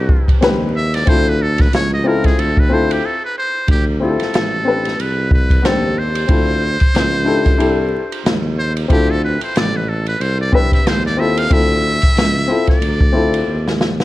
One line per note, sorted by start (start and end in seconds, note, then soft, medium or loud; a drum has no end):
0.00 0.14 C2 loud
0.00 0.36 C4 medium
0.00 0.36 D4 medium
0.00 0.37 G4 medium
0.00 0.38 G4 medium
0.00 0.38 B4 medium
0.09 kick medium
0.28 kick medium
0.28 ride medium
0.41 1.04 D#2 medium
0.41 0.66 C4 medium
0.41 0.67 D4 medium
0.41 0.67 G4 medium
0.41 0.68 B4 medium
0.41 snare loud
0.41 hi-hat pedal medium
0.41 ride medium
0.76 0.96 E5 loud
0.94 1.10 D5 loud
0.94 snare soft
0.94 ride medium
1.06 1.69 D2 loud
1.06 1.31 C4 medium
1.06 1.32 E4 medium
1.06 1.32 F4 medium
1.06 1.33 A4 medium
1.06 1.30 C5 loud
1.06 kick loud
1.06 ride medium
1.29 1.44 B4 loud
1.42 1.62 A4 medium
1.58 1.73 B4 medium
1.58 kick loud
1.58 snare soft
1.58 ride medium
1.72 2.34 C#2 loud
1.72 1.92 C#5 loud
1.72 snare loud
1.72 hi-hat pedal soft
1.72 ride medium
1.94 2.08 D#5 medium
2.04 2.68 C4 medium
2.04 2.69 E4 medium
2.04 2.70 F4 medium
2.04 2.71 A4 medium
2.04 2.27 A#4 medium
2.24 2.41 G#4 medium
2.24 kick medium
2.24 snare soft
2.24 ride medium
2.37 2.99 D2 loud
2.37 2.61 A4 medium
2.37 ride medium
2.57 2.75 B4 medium
2.57 kick medium
2.69 3.10 C4 medium
2.69 3.11 E4 medium
2.69 3.11 F4 medium
2.69 3.12 A4 medium
2.69 2.94 C5 loud
2.91 3.07 G4 medium
2.91 ride medium
3.06 3.24 A4 medium
3.25 3.36 B4 medium
3.38 3.67 C5 medium
3.68 4.17 D2 loud
3.68 3.85 G4 medium
3.68 kick loud
3.68 ride medium
4.00 4.49 C4 medium
4.00 4.49 E4 medium
4.00 4.50 F4 medium
4.00 4.10 G4 medium
4.00 5.02 A4 medium
4.10 4.53 A4 medium
4.20 4.25 A1 soft
4.20 snare soft
4.20 ride medium
4.33 4.95 A1 medium
4.33 snare loud
4.33 hi-hat pedal soft
4.33 ride medium
4.65 4.90 C4 medium
4.65 4.91 D4 medium
4.65 4.91 G4 medium
4.65 4.92 B4 medium
4.85 snare soft
4.85 ride medium
4.98 5.60 C2 medium
4.98 5.32 B4 medium
4.98 ride medium
5.31 5.67 B4 medium
5.31 kick loud
5.50 kick medium
5.50 ride medium
5.62 6.26 D#2 medium
5.62 5.71 B3 medium
5.62 6.29 D4 medium
5.62 6.29 G4 medium
5.62 6.00 A4 medium
5.62 6.30 C5 medium
5.62 snare loud
5.62 hi-hat pedal soft
5.62 ride medium
5.68 6.26 C4 medium
5.98 8.32 C5 loud
6.15 ride medium
6.27 6.78 D2 loud
6.27 6.69 C4 medium
6.27 6.69 E4 medium
6.27 6.70 F4 medium
6.27 6.70 A4 medium
6.27 kick loud
6.27 ride medium
6.80 6.86 C#2 soft
6.80 kick medium
6.80 ride medium
6.94 7.56 C#2 medium
6.94 snare loud
6.94 hi-hat pedal soft
6.94 ride medium
7.25 7.50 D4 medium
7.25 7.51 E4 medium
7.25 7.51 G4 medium
7.25 7.52 A4 medium
7.46 kick medium
7.46 ride soft
7.57 7.97 C2 medium
7.57 7.99 D4 medium
7.57 7.99 E4 medium
7.57 8.00 G4 medium
7.57 8.00 A4 medium
7.57 ride medium
8.12 ride medium
8.24 8.86 D#2 medium
8.24 snare loud
8.24 hi-hat pedal medium
8.24 ride medium
8.59 8.73 C5 medium
8.77 ride medium
8.88 9.39 D2 loud
8.88 9.82 C4 medium
8.88 9.82 E4 medium
8.88 9.83 F4 medium
8.88 9.12 G4 loud
8.88 9.83 A4 medium
8.88 kick loud
8.88 ride medium
9.10 9.23 A4 medium
9.24 9.41 B4 medium
9.41 9.47 A1 soft
9.41 9.59 C5 medium
9.41 ride medium
9.55 10.17 A1 medium
9.55 9.78 D5 loud
9.55 snare loud
9.55 hi-hat pedal soft
9.55 ride medium
9.76 9.90 B4 medium
9.89 10.08 A4 medium
10.06 10.22 B4 medium
10.06 ride medium
10.20 10.69 C2 medium
10.20 10.40 C5 medium
10.20 ride medium
10.41 10.56 D5 medium
10.52 10.77 C4 medium
10.52 10.78 D4 medium
10.52 10.78 G4 medium
10.52 10.79 B4 medium
10.52 10.73 E5 loud
10.52 kick loud
10.72 10.77 D#2 soft
10.72 10.89 E5 loud
10.72 kick medium
10.72 ride medium
10.86 11.48 D#2 medium
10.86 11.05 C5 loud
10.86 snare loud
10.86 hi-hat pedal medium
10.86 ride medium
11.06 11.21 D5 loud
11.06 snare soft
11.17 11.42 C4 medium
11.17 11.43 E4 medium
11.17 11.43 F4 medium
11.17 11.44 A4 medium
11.17 11.40 E5 loud
11.37 11.54 F5 loud
11.37 ride medium
11.50 12.00 D2 loud
11.50 12.15 C4 medium
11.50 12.16 E4 medium
11.50 12.17 F4 medium
11.50 12.17 A4 medium
11.50 12.68 E5 loud
11.50 kick loud
11.50 ride medium
12.02 12.08 C#2 soft
12.02 kick medium
12.02 ride medium
12.15 12.53 C#2 medium
12.15 snare loud
12.15 hi-hat pedal soft
12.15 ride medium
12.48 12.73 C4 medium
12.48 12.73 E4 medium
12.48 12.74 F4 medium
12.48 12.74 A4 medium
12.67 13.76 D5 medium
12.67 kick medium
12.67 snare soft
12.67 ride medium
12.81 13.43 D2 loud
12.81 ride medium
13.00 kick medium
13.12 13.54 C4 medium
13.12 13.54 E4 medium
13.12 13.55 F4 medium
13.12 13.55 A4 medium
13.34 ride medium
13.46 14.04 D#2 medium
13.68 snare medium
13.81 snare medium
14.00 snare medium